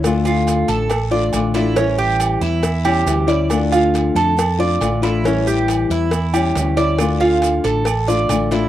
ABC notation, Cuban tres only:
X:1
M:4/4
L:1/8
Q:1/4=138
K:Dm
V:1 name="Cuban tres"
z F2 A2 d2 E | ^C G2 E2 G2 d- | d F2 A2 d2 E | ^C G2 E2 G2 d- |
d F2 A2 d2 E |]